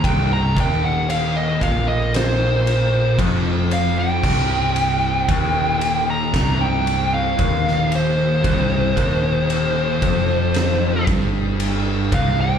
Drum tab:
CC |----------------|x---------------|----------------|
RD |x-x-x-x-x-x-x-x-|--x-x-x-x-x-x-x-|x-x-x-x-x-x-x-x-|
SD |--------o-------|--------o----o--|--------o-------|
BD |o-o---o-----o---|o---o---o---o---|o-o---o---o---o-|